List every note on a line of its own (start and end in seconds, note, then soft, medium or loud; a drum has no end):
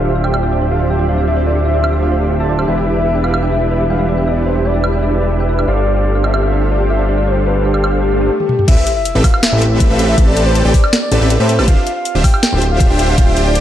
0.00 2.66 D1 medium
0.00 8.26 D3 medium
0.00 2.65 F3 medium
0.00 2.65 C4 medium
0.00 2.66 D4 medium
0.00 2.66 F4 medium
0.00 2.66 G4 medium
0.00 5.64 G4 medium
0.00 2.66 C5 medium
0.00 5.64 D5 medium
0.00 2.66 E5 medium
0.00 0.20 F5 loud
0.05 0.12 G4 medium
0.15 0.21 E5 medium
0.24 0.28 D5 medium
0.24 0.40 G5 medium
0.24 high woodblock medium
0.34 0.40 C5 medium
0.34 high woodblock medium
0.43 0.49 E5 medium
0.43 0.67 G5 medium
0.53 0.58 D5 medium
0.62 0.71 C5 medium
0.71 0.77 A4 medium
0.71 0.87 F5 medium
0.80 0.86 G4 medium
0.90 0.96 E5 medium
0.90 1.06 G5 medium
0.99 1.03 D5 medium
1.09 1.15 C5 medium
1.09 1.25 F5 medium
1.18 1.24 E5 medium
1.28 1.33 D5 medium
1.28 1.44 E5 medium
1.37 1.46 C5 medium
1.46 1.52 A4 medium
1.46 1.62 D5 medium
1.55 1.62 G4 medium
1.65 1.97 E5 medium
1.65 1.71 E5 medium
1.74 1.78 D5 medium
1.84 1.90 C5 medium
1.84 high woodblock medium
1.93 1.99 E5 medium
2.03 2.08 D5 medium
2.03 2.35 F5 medium
2.12 2.21 C5 medium
2.21 2.27 A4 medium
2.30 2.36 G4 medium
2.40 2.46 E5 medium
2.40 2.64 A5 medium
2.49 2.53 D5 medium
2.59 2.65 C5 medium
2.59 high woodblock medium
2.68 5.66 E1 medium
2.68 5.65 G3 medium
2.68 5.65 B3 medium
2.68 5.66 D4 medium
2.68 5.66 E4 medium
2.68 5.66 G4 medium
2.68 5.66 B4 medium
2.68 5.66 E5 medium
2.68 2.92 E5 medium
2.68 2.74 G5 medium
2.78 2.83 E5 medium
2.87 2.93 G4 medium
2.96 3.02 B4 medium
2.96 3.20 E5 medium
3.05 3.11 G4 medium
3.15 3.21 G5 medium
3.24 3.28 E5 medium
3.24 3.40 F5 medium
3.24 high woodblock medium
3.34 3.40 D5 medium
3.34 high woodblock medium
3.43 3.67 E5 medium
3.43 3.49 G5 medium
3.53 3.58 E5 medium
3.62 3.68 G4 medium
3.71 3.77 B4 medium
3.71 3.87 E5 medium
3.80 3.86 G4 medium
3.90 4.10 F5 medium
3.90 3.96 G5 medium
3.99 4.03 E5 medium
4.09 4.15 D5 medium
4.09 4.29 E5 medium
4.18 4.24 G5 medium
4.27 4.44 D5 medium
4.27 4.33 E5 medium
4.37 4.43 G4 medium
4.46 4.52 B4 medium
4.46 4.66 C5 medium
4.55 4.61 G4 medium
4.65 4.97 D5 medium
4.65 4.71 G5 medium
4.74 4.78 E5 medium
4.84 4.89 D5 medium
4.84 high woodblock medium
4.93 4.99 G5 medium
5.02 5.35 D5 medium
5.02 5.08 E5 medium
5.12 5.18 G4 medium
5.21 5.27 B4 medium
5.30 5.36 G4 medium
5.40 5.64 B4 medium
5.40 5.46 G5 medium
5.49 5.53 E5 medium
5.59 5.65 D5 medium
5.59 high woodblock medium
5.68 8.30 G1 medium
5.68 8.28 A3 medium
5.68 8.28 C4 medium
5.68 8.30 D4 medium
5.68 8.28 F4 medium
5.68 8.30 G4 medium
5.68 8.28 G4 medium
5.68 8.30 A4 medium
5.68 8.30 C5 medium
5.68 5.92 D5 loud
5.68 8.30 F5 medium
5.68 5.74 F5 medium
5.78 5.83 D5 medium
5.87 5.93 G4 medium
5.96 6.02 A4 medium
5.96 6.26 D5 medium
6.05 6.11 G4 medium
6.15 6.21 F5 medium
6.24 6.28 D5 medium
6.24 6.40 E5 medium
6.24 high woodblock medium
6.34 6.39 C5 medium
6.34 high woodblock medium
6.43 6.67 E5 medium
6.43 6.49 F5 medium
6.53 6.58 D5 medium
6.62 6.68 G4 medium
6.71 6.77 A4 medium
6.71 6.87 D5 medium
6.80 6.86 G4 medium
6.90 7.06 E5 medium
6.90 6.96 F5 medium
6.99 7.03 D5 medium
7.09 7.15 C5 medium
7.09 7.29 D5 medium
7.18 7.24 F5 medium
7.28 7.44 C5 medium
7.28 7.33 D5 medium
7.37 7.43 G4 medium
7.46 7.52 A4 medium
7.46 7.62 B4 medium
7.55 7.61 G4 medium
7.65 7.97 G4 medium
7.65 7.71 F5 medium
7.74 7.78 D5 medium
7.74 high woodblock medium
7.84 7.90 C5 medium
7.84 high woodblock medium
7.93 7.99 F5 medium
7.93 swell medium
8.03 8.35 G4 medium
8.03 8.08 D5 medium
8.12 8.15 F5 medium
8.21 8.30 A4 loud
8.40 8.64 G4 medium
8.40 high tom soft
8.49 mid tom medium
8.59 mid tom medium
8.68 8.77 A1 loud
8.68 8.79 C4 medium
8.68 8.79 G4 medium
8.68 8.79 A4 medium
8.68 8.79 B4 medium
8.68 8.92 E5 loud
8.68 8.79 E5 medium
8.68 kick loud
8.68 closed hi-hat medium
8.68 crash loud
8.68 sub drop medium
8.87 closed hi-hat medium
8.96 9.20 E5 loud
9.05 closed hi-hat medium
9.15 9.23 A1 loud
9.15 9.25 C4 medium
9.15 9.25 G4 medium
9.15 9.25 A4 medium
9.15 9.25 B4 medium
9.15 9.25 E5 medium
9.24 9.44 F5 medium
9.24 kick loud
9.24 open hi-hat loud
9.24 high woodblock medium
9.34 high woodblock medium
9.43 9.67 E5 medium
9.43 snare loud
9.43 closed hi-hat medium
9.53 9.88 A1 loud
9.53 9.88 C4 loud
9.53 9.88 G4 medium
9.53 9.88 A4 medium
9.53 9.88 B4 medium
9.53 9.88 E5 loud
9.62 closed hi-hat medium
9.71 9.92 E5 medium
9.80 kick loud
9.80 closed hi-hat medium
9.90 10.16 A1 loud
9.90 10.16 C4 loud
9.90 10.16 G4 medium
9.90 10.16 A4 loud
9.90 10.16 B4 loud
9.90 10.16 E5 loud
9.90 10.06 F5 medium
9.99 closed hi-hat medium
10.09 10.25 E5 medium
10.18 10.63 A1 loud
10.18 10.63 C4 medium
10.18 10.63 G4 medium
10.18 10.63 A4 medium
10.18 10.63 B4 medium
10.18 10.63 A5 medium
10.18 kick loud
10.18 closed hi-hat medium
10.27 10.44 D5 medium
10.37 closed hi-hat medium
10.46 10.62 C5 medium
10.55 closed hi-hat medium
10.65 10.73 A1 loud
10.65 10.75 C4 medium
10.65 10.75 G4 medium
10.65 10.75 A4 medium
10.65 10.75 B4 medium
10.65 10.97 D5 loud
10.65 10.75 G5 loud
10.74 kick loud
10.74 open hi-hat medium
10.84 high woodblock medium
10.93 snare loud
10.93 closed hi-hat medium
11.02 11.35 D5 loud
11.12 11.19 A1 loud
11.12 11.19 C4 medium
11.12 11.19 G4 medium
11.12 11.19 A4 medium
11.12 11.19 B4 medium
11.12 11.19 A5 medium
11.12 closed hi-hat medium
11.21 11.38 A1 loud
11.21 11.32 C4 medium
11.21 11.32 G4 medium
11.21 11.32 A4 medium
11.21 11.32 B4 medium
11.21 11.32 E5 medium
11.30 closed hi-hat medium
11.40 11.60 A2 loud
11.40 11.50 C4 medium
11.40 11.50 G4 medium
11.40 11.50 A4 medium
11.40 11.50 B4 medium
11.40 11.64 C5 loud
11.40 11.50 E5 medium
11.49 closed hi-hat medium
11.59 11.69 A1 loud
11.59 11.66 C4 medium
11.59 11.66 G4 medium
11.59 11.66 A4 medium
11.59 11.66 B4 medium
11.59 11.66 A5 medium
11.59 high woodblock medium
11.68 11.77 D1 loud
11.68 11.79 D4 medium
11.68 11.79 F4 medium
11.68 11.79 G4 medium
11.68 11.79 C5 medium
11.68 11.79 E5 medium
11.68 11.92 F5 loud
11.68 kick loud
11.68 closed hi-hat medium
11.87 closed hi-hat medium
11.96 12.20 F5 loud
12.05 closed hi-hat medium
12.15 12.23 D1 loud
12.15 12.25 D4 medium
12.15 12.25 F4 medium
12.15 12.25 G4 medium
12.15 12.25 C5 medium
12.15 12.25 E5 medium
12.24 12.40 G5 medium
12.24 kick loud
12.24 open hi-hat medium
12.24 high woodblock medium
12.34 high woodblock medium
12.43 12.67 G5 loud
12.43 snare loud
12.43 closed hi-hat medium
12.53 12.88 D1 loud
12.53 12.88 D4 loud
12.53 12.88 F4 medium
12.53 12.88 G4 medium
12.53 12.88 C5 medium
12.53 12.88 E5 loud
12.62 closed hi-hat medium
12.71 12.87 F5 medium
12.80 kick loud
12.80 closed hi-hat medium
12.90 13.16 D1 loud
12.90 13.16 D4 loud
12.90 13.16 F4 loud
12.90 13.16 G4 loud
12.90 13.16 C5 loud
12.90 13.16 E5 loud
12.90 13.10 G5 medium
12.99 closed hi-hat medium
13.09 13.29 F5 medium
13.18 13.60 D1 loud
13.18 13.60 D4 medium
13.18 13.60 F4 medium
13.18 13.60 G4 medium
13.18 13.60 C5 medium
13.18 13.60 G5 medium
13.18 kick loud
13.18 closed hi-hat medium
13.28 13.44 E5 medium
13.37 closed hi-hat medium
13.46 13.60 D5 medium
13.55 closed hi-hat medium